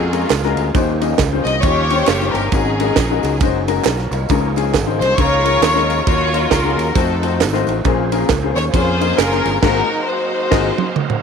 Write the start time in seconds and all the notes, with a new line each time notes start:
Already playing: F2 G#3 A#3 C#4 F4 F#4 G#4 F5
0.13 G#3 C#4 F4 F#4 A#4, ride, tambourine
0.30 C#2, snare, clap, ride, tambourine
0.43 G#3 C#4 F4 F#4 A#4, snare
0.56 D2, ride, tambourine
0.74 D#2 D#3 F3 G3 A#3 C#4 D#4 F4 F#4 C5, kick, ride, tambourine
0.81 G4
1.01 G3 C#4 D#4 F4 D#5, ride, tambourine
1.18 C#2, kick, snare, clap, ride, tambourine
1.33 G3 C#4 D#4 F4 C5
1.44 C2 D#5, snare, ride, tambourine
1.62 D#2 G3 C#4 D#4 F4 G4 C#5 D#5, kick, ride, tambourine
1.90 G3 C#4 D#4 F4 C5, ride, tambourine
2.07 F#1, snare, clap, ride, tambourine
2.20 G3 C#4 D#4 F4 C5, snare
2.33 G1 A#4, ride, tambourine
2.52 G#1 G#2 F#3 G#3 A#3 C#4 D#4 F#4 G#4 A#4, kick, ride, tambourine
2.80 G#3 C#4 D#4 F#4 A#4, ride, tambourine
2.96 A#1, kick, snare, clap, ride, tambourine
3.11 G#3 C#4 D#4 F#4 A#4
3.23 C#2, ride, tambourine
3.40 F#1 G#3 C#4 D#4 F#4 C5, kick, ride, tambourine
3.68 G#3 C#4 D#4 F#4 A#4, ride, tambourine
3.84 B1 C#4 F4 A#4, snare, clap, ride, tambourine
3.99 snare
4.11 C2 F4 A#4 C#5 D#5, ride, tambourine
4.29 C#2 C#3 F3 G#3 A#3 C#4 D#4 F4 G#4 A#4, kick, ride, tambourine
4.56 G#3 C#4 D#4 F4 G#4, ride, tambourine
4.74 G#1, kick, snare, clap, ride, tambourine
4.87 G#3 C#4 D#4 F4 C5
4.99 C2 C5, snare, ride, tambourine
5.18 C#2 G#3 C#4 D#4 F4 A#4 C#5, kick, ride, tambourine
5.44 G#3 C#4 D#4 F4 A#4, ride, tambourine
5.61 D#2, snare, clap, ride, tambourine
5.75 G#3 C#4 D#4 F4 A#4, snare
5.90 ride, tambourine
6.07 D#2 D#3 F#3 A#3 C#4 D#4 F4 F#4 A#4 C#5, kick, ride, tambourine
6.34 A#3 D#4 F4 F#4 C#5, ride, tambourine
6.51 C#2 C#4 F#4 A#4, kick, snare, clap, ride, tambourine
6.64 A#3 D#4 F4 F#4 G#4
6.77 D#2, ride, tambourine
6.94 F2 F3 A3 C4 D#4 F4 F#4 A4 C5, kick, ride, tambourine
7.00 F#4
7.22 A3 D#4 F4 F#4 C5, ride, tambourine
7.40 G#1, snare, clap, ride, tambourine
7.53 A3 D#4 F4 F#4 C5, snare
7.67 A1, ride, tambourine
7.84 A#1 A#2 F3 A#3 C#4 F4 G#4 C5, kick, ride, tambourine
8.12 A#3 C#4 F4 G#4 A#4, ride, tambourine
8.29 C#2, kick, snare, clap, ride, tambourine
8.43 A#3 C#4 F4 G#4 C5
8.55 D#2 C#5, snare, ride, tambourine
8.73 F2 A#3 C#4 F4 G#4 C5 C#5, kick, ride, tambourine
9.01 A#3 C#4 F4 G#4 D#5, ride, tambourine
9.18 F#1 C#4 F4 A#4, snare, clap, ride, tambourine
9.31 A#3 C#4 F4 G#4 A#4, snare
9.45 G1, ride, tambourine
9.62 G#1 G#2 F#3 A#3 C4 D#4 F4 F#4 G#4 A#4 C5 F5, kick, snare, crash
10.07 D#4 F#4 C5
10.51 G#1 A#3 F4 F#4 G#4 D#5, kick, snare, crash
10.78 high tom
10.96 D#4 F#4 A#4, mid tom
11.10 mid tom